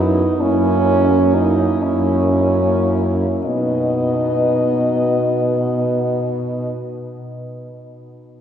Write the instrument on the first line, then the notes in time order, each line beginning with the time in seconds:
french horn
Already playing: F#2 B3 D#4 E4
0.41 F#2 A#3 C#4 E4
1.10 A#3 E4
1.35 D#4
1.83 F#2 C#4
2.63 A#3 E4
3.44 B2 B3 D#4 D#5